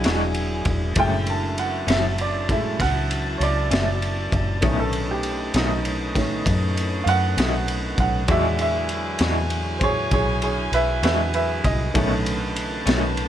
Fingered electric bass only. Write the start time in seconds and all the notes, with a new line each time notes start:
0.06 E1
0.66 E1
0.96 F#1
1.87 F#1
2.79 C#2
3.40 C#2
3.71 F#1
4.32 F#1
4.63 B1
5.54 B1
6.46 F#2
7.06 F#2
7.37 B1
7.98 B1
8.29 E2
9.20 E2
10.11 B1
10.72 B1
11.03 E2
11.64 C2
11.95 B1
12.86 B1